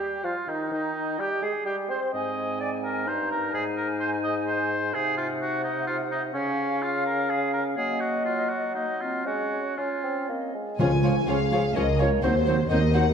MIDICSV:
0, 0, Header, 1, 12, 480
1, 0, Start_track
1, 0, Tempo, 470958
1, 728, Time_signature, 3, 2, 24, 8
1, 7914, Tempo, 488599
1, 8874, Tempo, 513699
1, 10794, Tempo, 478088
1, 13141, End_track
2, 0, Start_track
2, 0, Title_t, "Flute section"
2, 0, Program_c, 0, 73
2, 0, Note_on_c, 0, 67, 49
2, 237, Note_off_c, 0, 67, 0
2, 241, Note_on_c, 0, 65, 43
2, 485, Note_off_c, 0, 65, 0
2, 488, Note_on_c, 0, 63, 46
2, 720, Note_off_c, 0, 63, 0
2, 732, Note_on_c, 0, 63, 53
2, 1201, Note_off_c, 0, 63, 0
2, 1205, Note_on_c, 0, 67, 50
2, 1442, Note_off_c, 0, 67, 0
2, 1448, Note_on_c, 0, 68, 52
2, 1509, Note_off_c, 0, 68, 0
2, 1687, Note_on_c, 0, 67, 50
2, 1922, Note_off_c, 0, 67, 0
2, 1927, Note_on_c, 0, 72, 56
2, 2165, Note_off_c, 0, 72, 0
2, 2179, Note_on_c, 0, 80, 47
2, 3093, Note_off_c, 0, 80, 0
2, 3128, Note_on_c, 0, 82, 42
2, 3593, Note_on_c, 0, 80, 57
2, 3603, Note_off_c, 0, 82, 0
2, 4790, Note_off_c, 0, 80, 0
2, 5038, Note_on_c, 0, 78, 58
2, 6434, Note_off_c, 0, 78, 0
2, 6467, Note_on_c, 0, 77, 55
2, 7918, Note_on_c, 0, 75, 52
2, 7920, Note_off_c, 0, 77, 0
2, 8838, Note_off_c, 0, 75, 0
2, 8877, Note_on_c, 0, 75, 38
2, 9349, Note_off_c, 0, 75, 0
2, 9365, Note_on_c, 0, 73, 39
2, 9837, Note_off_c, 0, 73, 0
2, 9848, Note_on_c, 0, 73, 39
2, 10315, Note_off_c, 0, 73, 0
2, 10320, Note_on_c, 0, 75, 36
2, 10560, Note_off_c, 0, 75, 0
2, 10782, Note_on_c, 0, 80, 68
2, 11246, Note_off_c, 0, 80, 0
2, 11285, Note_on_c, 0, 77, 55
2, 11759, Note_off_c, 0, 77, 0
2, 11767, Note_on_c, 0, 75, 53
2, 12001, Note_on_c, 0, 73, 59
2, 12006, Note_off_c, 0, 75, 0
2, 12237, Note_on_c, 0, 72, 65
2, 12242, Note_off_c, 0, 73, 0
2, 12707, Note_off_c, 0, 72, 0
2, 12719, Note_on_c, 0, 75, 61
2, 12944, Note_on_c, 0, 78, 64
2, 12958, Note_off_c, 0, 75, 0
2, 13141, Note_off_c, 0, 78, 0
2, 13141, End_track
3, 0, Start_track
3, 0, Title_t, "Violin section"
3, 0, Program_c, 1, 48
3, 10787, Note_on_c, 1, 80, 65
3, 11249, Note_off_c, 1, 80, 0
3, 11279, Note_on_c, 1, 77, 67
3, 11762, Note_on_c, 1, 75, 66
3, 11765, Note_off_c, 1, 77, 0
3, 12002, Note_on_c, 1, 73, 63
3, 12004, Note_off_c, 1, 75, 0
3, 12082, Note_off_c, 1, 73, 0
3, 12230, Note_on_c, 1, 72, 76
3, 12703, Note_off_c, 1, 72, 0
3, 12714, Note_on_c, 1, 75, 69
3, 12950, Note_off_c, 1, 75, 0
3, 12957, Note_on_c, 1, 78, 68
3, 13141, Note_off_c, 1, 78, 0
3, 13141, End_track
4, 0, Start_track
4, 0, Title_t, "French horn section"
4, 0, Program_c, 2, 60
4, 10795, Note_on_c, 2, 65, 52
4, 11253, Note_off_c, 2, 65, 0
4, 11293, Note_on_c, 2, 68, 58
4, 11762, Note_off_c, 2, 68, 0
4, 11773, Note_on_c, 2, 70, 54
4, 12237, Note_off_c, 2, 70, 0
4, 12239, Note_on_c, 2, 72, 53
4, 12715, Note_on_c, 2, 70, 65
4, 12717, Note_off_c, 2, 72, 0
4, 13141, Note_off_c, 2, 70, 0
4, 13141, End_track
5, 0, Start_track
5, 0, Title_t, "Violin section"
5, 0, Program_c, 3, 48
5, 10796, Note_on_c, 3, 68, 53
5, 10798, Note_on_c, 3, 73, 51
5, 10877, Note_off_c, 3, 68, 0
5, 10878, Note_off_c, 3, 73, 0
5, 11039, Note_on_c, 3, 68, 45
5, 11042, Note_on_c, 3, 73, 44
5, 11119, Note_off_c, 3, 68, 0
5, 11122, Note_off_c, 3, 73, 0
5, 11278, Note_on_c, 3, 68, 43
5, 11280, Note_on_c, 3, 73, 41
5, 11358, Note_off_c, 3, 68, 0
5, 11361, Note_off_c, 3, 73, 0
5, 11531, Note_on_c, 3, 68, 48
5, 11531, Note_on_c, 3, 73, 43
5, 11611, Note_off_c, 3, 68, 0
5, 11611, Note_off_c, 3, 73, 0
5, 11762, Note_on_c, 3, 68, 48
5, 11762, Note_on_c, 3, 73, 45
5, 11842, Note_off_c, 3, 68, 0
5, 11842, Note_off_c, 3, 73, 0
5, 11989, Note_on_c, 3, 68, 49
5, 11991, Note_on_c, 3, 73, 45
5, 12069, Note_off_c, 3, 68, 0
5, 12072, Note_off_c, 3, 73, 0
5, 12228, Note_on_c, 3, 66, 59
5, 12228, Note_on_c, 3, 72, 54
5, 12308, Note_off_c, 3, 66, 0
5, 12308, Note_off_c, 3, 72, 0
5, 12471, Note_on_c, 3, 66, 45
5, 12472, Note_on_c, 3, 72, 51
5, 12551, Note_off_c, 3, 66, 0
5, 12553, Note_off_c, 3, 72, 0
5, 12708, Note_on_c, 3, 72, 48
5, 12709, Note_on_c, 3, 66, 47
5, 12788, Note_off_c, 3, 72, 0
5, 12789, Note_off_c, 3, 66, 0
5, 12946, Note_on_c, 3, 72, 52
5, 12947, Note_on_c, 3, 66, 49
5, 13026, Note_off_c, 3, 72, 0
5, 13027, Note_off_c, 3, 66, 0
5, 13141, End_track
6, 0, Start_track
6, 0, Title_t, "Oboe"
6, 0, Program_c, 4, 68
6, 0, Note_on_c, 4, 67, 55
6, 248, Note_on_c, 4, 65, 54
6, 263, Note_off_c, 4, 67, 0
6, 499, Note_on_c, 4, 63, 46
6, 514, Note_off_c, 4, 65, 0
6, 735, Note_off_c, 4, 63, 0
6, 740, Note_on_c, 4, 63, 62
6, 1227, Note_on_c, 4, 67, 63
6, 1242, Note_off_c, 4, 63, 0
6, 1454, Note_on_c, 4, 68, 55
6, 1470, Note_off_c, 4, 67, 0
6, 1685, Note_off_c, 4, 68, 0
6, 1691, Note_on_c, 4, 67, 57
6, 1798, Note_off_c, 4, 67, 0
6, 1936, Note_on_c, 4, 72, 54
6, 2043, Note_off_c, 4, 72, 0
6, 2172, Note_on_c, 4, 75, 71
6, 2643, Note_off_c, 4, 75, 0
6, 2653, Note_on_c, 4, 74, 60
6, 2760, Note_off_c, 4, 74, 0
6, 2893, Note_on_c, 4, 70, 66
6, 3134, Note_on_c, 4, 72, 59
6, 3149, Note_off_c, 4, 70, 0
6, 3369, Note_off_c, 4, 72, 0
6, 3378, Note_on_c, 4, 70, 67
6, 3602, Note_off_c, 4, 70, 0
6, 3608, Note_on_c, 4, 68, 72
6, 3713, Note_off_c, 4, 68, 0
6, 3840, Note_on_c, 4, 70, 66
6, 3947, Note_off_c, 4, 70, 0
6, 4075, Note_on_c, 4, 72, 65
6, 4183, Note_off_c, 4, 72, 0
6, 4317, Note_on_c, 4, 75, 68
6, 4425, Note_off_c, 4, 75, 0
6, 4554, Note_on_c, 4, 72, 75
6, 5037, Note_on_c, 4, 68, 76
6, 5052, Note_off_c, 4, 72, 0
6, 5266, Note_off_c, 4, 68, 0
6, 5272, Note_on_c, 4, 65, 70
6, 5377, Note_off_c, 4, 65, 0
6, 5516, Note_on_c, 4, 66, 68
6, 5739, Note_off_c, 4, 66, 0
6, 5745, Note_on_c, 4, 63, 58
6, 5974, Note_off_c, 4, 63, 0
6, 5980, Note_on_c, 4, 65, 67
6, 6088, Note_off_c, 4, 65, 0
6, 6231, Note_on_c, 4, 63, 65
6, 6336, Note_off_c, 4, 63, 0
6, 6457, Note_on_c, 4, 61, 80
6, 6950, Note_on_c, 4, 65, 70
6, 6966, Note_off_c, 4, 61, 0
6, 7184, Note_off_c, 4, 65, 0
6, 7190, Note_on_c, 4, 70, 69
6, 7437, Note_on_c, 4, 68, 60
6, 7452, Note_off_c, 4, 70, 0
6, 7670, Note_off_c, 4, 68, 0
6, 7676, Note_on_c, 4, 70, 62
6, 7784, Note_off_c, 4, 70, 0
6, 7919, Note_on_c, 4, 68, 79
6, 8144, Note_on_c, 4, 66, 60
6, 8159, Note_off_c, 4, 68, 0
6, 8383, Note_off_c, 4, 66, 0
6, 8389, Note_on_c, 4, 65, 61
6, 8628, Note_on_c, 4, 66, 59
6, 8643, Note_off_c, 4, 65, 0
6, 8870, Note_off_c, 4, 66, 0
6, 8876, Note_on_c, 4, 63, 51
6, 9123, Note_on_c, 4, 65, 53
6, 9137, Note_off_c, 4, 63, 0
6, 9353, Note_off_c, 4, 65, 0
6, 9358, Note_on_c, 4, 66, 59
6, 9842, Note_on_c, 4, 65, 49
6, 9856, Note_off_c, 4, 66, 0
6, 10322, Note_off_c, 4, 65, 0
6, 10799, Note_on_c, 4, 73, 44
6, 10910, Note_off_c, 4, 73, 0
6, 11043, Note_on_c, 4, 73, 46
6, 11154, Note_off_c, 4, 73, 0
6, 11284, Note_on_c, 4, 73, 50
6, 11394, Note_off_c, 4, 73, 0
6, 11522, Note_on_c, 4, 73, 40
6, 11632, Note_off_c, 4, 73, 0
6, 11759, Note_on_c, 4, 73, 50
6, 11869, Note_off_c, 4, 73, 0
6, 11989, Note_on_c, 4, 73, 46
6, 12100, Note_off_c, 4, 73, 0
6, 12234, Note_on_c, 4, 72, 55
6, 12343, Note_off_c, 4, 72, 0
6, 12481, Note_on_c, 4, 72, 46
6, 12588, Note_off_c, 4, 72, 0
6, 12717, Note_on_c, 4, 72, 50
6, 12825, Note_off_c, 4, 72, 0
6, 12947, Note_on_c, 4, 72, 43
6, 13056, Note_off_c, 4, 72, 0
6, 13141, End_track
7, 0, Start_track
7, 0, Title_t, "Clarinet"
7, 0, Program_c, 5, 71
7, 0, Note_on_c, 5, 67, 49
7, 241, Note_on_c, 5, 65, 47
7, 256, Note_off_c, 5, 67, 0
7, 475, Note_off_c, 5, 65, 0
7, 481, Note_on_c, 5, 63, 48
7, 721, Note_off_c, 5, 63, 0
7, 731, Note_on_c, 5, 63, 46
7, 1213, Note_on_c, 5, 67, 52
7, 1228, Note_off_c, 5, 63, 0
7, 1446, Note_off_c, 5, 67, 0
7, 1454, Note_on_c, 5, 68, 54
7, 1695, Note_on_c, 5, 67, 52
7, 1710, Note_off_c, 5, 68, 0
7, 1935, Note_on_c, 5, 72, 53
7, 1950, Note_off_c, 5, 67, 0
7, 2173, Note_off_c, 5, 72, 0
7, 2178, Note_on_c, 5, 60, 41
7, 3123, Note_on_c, 5, 63, 57
7, 3138, Note_off_c, 5, 60, 0
7, 5029, Note_off_c, 5, 63, 0
7, 5034, Note_on_c, 5, 63, 49
7, 6432, Note_off_c, 5, 63, 0
7, 6456, Note_on_c, 5, 61, 49
7, 7885, Note_off_c, 5, 61, 0
7, 7920, Note_on_c, 5, 58, 49
7, 8707, Note_off_c, 5, 58, 0
7, 8874, Note_on_c, 5, 58, 41
7, 8982, Note_off_c, 5, 58, 0
7, 9105, Note_on_c, 5, 60, 38
7, 9350, Note_on_c, 5, 61, 36
7, 9364, Note_off_c, 5, 60, 0
7, 9839, Note_off_c, 5, 61, 0
7, 9843, Note_on_c, 5, 61, 37
7, 10312, Note_off_c, 5, 61, 0
7, 10323, Note_on_c, 5, 60, 38
7, 10557, Note_off_c, 5, 60, 0
7, 10801, Note_on_c, 5, 61, 46
7, 10911, Note_off_c, 5, 61, 0
7, 11052, Note_on_c, 5, 61, 40
7, 11160, Note_off_c, 5, 61, 0
7, 11296, Note_on_c, 5, 61, 48
7, 11403, Note_off_c, 5, 61, 0
7, 11537, Note_on_c, 5, 61, 46
7, 11643, Note_off_c, 5, 61, 0
7, 11770, Note_on_c, 5, 61, 51
7, 11877, Note_off_c, 5, 61, 0
7, 12012, Note_on_c, 5, 61, 45
7, 12118, Note_off_c, 5, 61, 0
7, 12244, Note_on_c, 5, 63, 49
7, 12351, Note_off_c, 5, 63, 0
7, 12480, Note_on_c, 5, 63, 44
7, 12587, Note_off_c, 5, 63, 0
7, 12720, Note_on_c, 5, 63, 54
7, 12827, Note_off_c, 5, 63, 0
7, 12967, Note_on_c, 5, 63, 50
7, 13072, Note_off_c, 5, 63, 0
7, 13141, End_track
8, 0, Start_track
8, 0, Title_t, "Viola section"
8, 0, Program_c, 6, 48
8, 10793, Note_on_c, 6, 53, 49
8, 10794, Note_on_c, 6, 65, 47
8, 10874, Note_off_c, 6, 53, 0
8, 10875, Note_off_c, 6, 65, 0
8, 11033, Note_on_c, 6, 65, 36
8, 11035, Note_on_c, 6, 53, 39
8, 11113, Note_off_c, 6, 65, 0
8, 11115, Note_off_c, 6, 53, 0
8, 11279, Note_on_c, 6, 53, 48
8, 11280, Note_on_c, 6, 65, 50
8, 11359, Note_off_c, 6, 53, 0
8, 11360, Note_off_c, 6, 65, 0
8, 11513, Note_on_c, 6, 53, 39
8, 11517, Note_on_c, 6, 65, 41
8, 11593, Note_off_c, 6, 53, 0
8, 11598, Note_off_c, 6, 65, 0
8, 11760, Note_on_c, 6, 53, 47
8, 11761, Note_on_c, 6, 65, 52
8, 11840, Note_off_c, 6, 53, 0
8, 11841, Note_off_c, 6, 65, 0
8, 12006, Note_on_c, 6, 65, 45
8, 12009, Note_on_c, 6, 53, 43
8, 12087, Note_off_c, 6, 65, 0
8, 12089, Note_off_c, 6, 53, 0
8, 12250, Note_on_c, 6, 54, 53
8, 12252, Note_on_c, 6, 60, 52
8, 12330, Note_off_c, 6, 54, 0
8, 12333, Note_off_c, 6, 60, 0
8, 12482, Note_on_c, 6, 54, 45
8, 12484, Note_on_c, 6, 60, 47
8, 12562, Note_off_c, 6, 54, 0
8, 12564, Note_off_c, 6, 60, 0
8, 12720, Note_on_c, 6, 54, 58
8, 12724, Note_on_c, 6, 60, 58
8, 12800, Note_off_c, 6, 54, 0
8, 12804, Note_off_c, 6, 60, 0
8, 12951, Note_on_c, 6, 60, 51
8, 12952, Note_on_c, 6, 54, 46
8, 13032, Note_off_c, 6, 60, 0
8, 13033, Note_off_c, 6, 54, 0
8, 13141, End_track
9, 0, Start_track
9, 0, Title_t, "Bassoon"
9, 0, Program_c, 7, 70
9, 0, Note_on_c, 7, 55, 40
9, 232, Note_off_c, 7, 55, 0
9, 244, Note_on_c, 7, 53, 48
9, 353, Note_off_c, 7, 53, 0
9, 486, Note_on_c, 7, 51, 45
9, 719, Note_off_c, 7, 51, 0
9, 726, Note_on_c, 7, 51, 50
9, 1197, Note_off_c, 7, 51, 0
9, 1210, Note_on_c, 7, 55, 45
9, 1315, Note_off_c, 7, 55, 0
9, 1447, Note_on_c, 7, 56, 48
9, 1553, Note_off_c, 7, 56, 0
9, 1683, Note_on_c, 7, 55, 57
9, 1930, Note_on_c, 7, 60, 51
9, 1945, Note_off_c, 7, 55, 0
9, 2171, Note_off_c, 7, 60, 0
9, 2184, Note_on_c, 7, 44, 47
9, 3132, Note_on_c, 7, 43, 54
9, 3147, Note_off_c, 7, 44, 0
9, 3595, Note_off_c, 7, 43, 0
9, 3601, Note_on_c, 7, 44, 59
9, 5036, Note_on_c, 7, 48, 62
9, 5051, Note_off_c, 7, 44, 0
9, 6462, Note_off_c, 7, 48, 0
9, 6467, Note_on_c, 7, 49, 53
9, 7891, Note_off_c, 7, 49, 0
9, 7925, Note_on_c, 7, 54, 62
9, 9358, Note_on_c, 7, 56, 44
9, 9372, Note_off_c, 7, 54, 0
9, 9710, Note_off_c, 7, 56, 0
9, 9841, Note_on_c, 7, 61, 47
9, 9950, Note_off_c, 7, 61, 0
9, 10084, Note_on_c, 7, 60, 51
9, 10315, Note_off_c, 7, 60, 0
9, 10320, Note_on_c, 7, 58, 45
9, 10555, Note_off_c, 7, 58, 0
9, 10560, Note_on_c, 7, 56, 40
9, 10791, Note_off_c, 7, 56, 0
9, 10799, Note_on_c, 7, 53, 49
9, 10909, Note_off_c, 7, 53, 0
9, 11042, Note_on_c, 7, 53, 42
9, 11153, Note_off_c, 7, 53, 0
9, 11287, Note_on_c, 7, 53, 42
9, 11396, Note_off_c, 7, 53, 0
9, 11525, Note_on_c, 7, 53, 44
9, 11634, Note_off_c, 7, 53, 0
9, 11758, Note_on_c, 7, 53, 47
9, 11868, Note_off_c, 7, 53, 0
9, 11998, Note_on_c, 7, 53, 47
9, 12107, Note_off_c, 7, 53, 0
9, 12239, Note_on_c, 7, 54, 52
9, 12347, Note_off_c, 7, 54, 0
9, 12480, Note_on_c, 7, 54, 39
9, 12587, Note_off_c, 7, 54, 0
9, 12711, Note_on_c, 7, 54, 42
9, 12820, Note_off_c, 7, 54, 0
9, 12955, Note_on_c, 7, 54, 43
9, 13062, Note_off_c, 7, 54, 0
9, 13141, End_track
10, 0, Start_track
10, 0, Title_t, "Timpani"
10, 0, Program_c, 8, 47
10, 10789, Note_on_c, 8, 49, 69
10, 11486, Note_off_c, 8, 49, 0
10, 13141, End_track
11, 0, Start_track
11, 0, Title_t, "Cello section"
11, 0, Program_c, 10, 48
11, 10794, Note_on_c, 10, 37, 57
11, 11229, Note_off_c, 10, 37, 0
11, 11286, Note_on_c, 10, 37, 53
11, 11712, Note_off_c, 10, 37, 0
11, 11772, Note_on_c, 10, 37, 61
11, 12190, Note_off_c, 10, 37, 0
11, 12250, Note_on_c, 10, 39, 60
11, 12666, Note_off_c, 10, 39, 0
11, 12722, Note_on_c, 10, 39, 55
11, 13140, Note_off_c, 10, 39, 0
11, 13141, End_track
12, 0, Start_track
12, 0, Title_t, "Double bass section"
12, 0, Program_c, 11, 48
12, 10802, Note_on_c, 11, 37, 51
12, 11234, Note_off_c, 11, 37, 0
12, 11288, Note_on_c, 11, 37, 45
12, 11714, Note_off_c, 11, 37, 0
12, 11771, Note_on_c, 11, 37, 56
12, 12190, Note_off_c, 11, 37, 0
12, 12248, Note_on_c, 11, 39, 65
12, 12666, Note_off_c, 11, 39, 0
12, 12721, Note_on_c, 11, 39, 54
12, 13140, Note_off_c, 11, 39, 0
12, 13141, End_track
0, 0, End_of_file